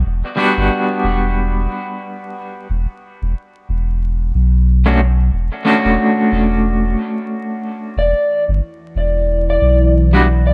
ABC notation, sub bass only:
X:1
M:4/4
L:1/16
Q:"Swing 16ths" 1/4=91
K:Edor
V:1 name="Sub bass" clef=bass
E,,, z2 G,,, z2 E,,,4 z6 | E,,, z2 E,,, z2 E,,,4 B,,,6 | E,,, z2 E,,, z2 E,,,4 z6 | E,,, z2 G,,, z2 E,,,4 B,,,6 |]